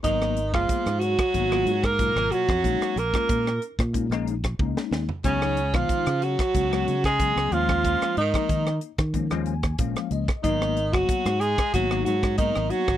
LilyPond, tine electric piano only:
<<
  \new Staff \with { instrumentName = "Tine electric piano" } { \time 4/4 \key gis \dorian \tempo 4 = 92 r1 | r1 | r1 | r2 r8 gis''8 eis''8 dis''8 |
r1 | }
  \new Staff \with { instrumentName = "Tine electric piano" } { \time 4/4 \key gis \dorian <fis ais b dis'>8 r16 <gis ais b gis'>8 r16 <b dis'>16 r16 <fis ais b dis'>16 <fis ais b eis'>16 r16 dis'16 <b, fis ais eis'>8. r16 | <gis ais cis' dis'>8 r16 <gis ais cis' eis'>8 r16 <cis' dis'>16 r16 <gis ais cis' dis'>16 <gis ais cis' dis'>16 r16 <cis' eis'>16 <gis ais cis' dis'>8. r16 | <fis gis b dis'>8 r16 <dis gis b dis'>8 r16 <b eis'>16 r16 <fis gis b cis'>16 <fis gis b cis'>16 r8 <fis gis b cis'>8 <eis gis ais cis'>8~ | <eis gis ais cis'>8 r16 <eis gis ais dis'>8 r16 <ais dis'>16 r16 <eis gis ais cis'>16 <eis gis ais cis'>16 r16 <ais cis'>16 <eis gis ais cis'>8. r16 |
<fis ais b dis'>8 r16 <fis ais b fis'>8 r16 <b dis'>16 r16 <fis ais b dis'>16 <fis ais b dis'>16 r8 <fis ais b dis'>8. r16 | }
>>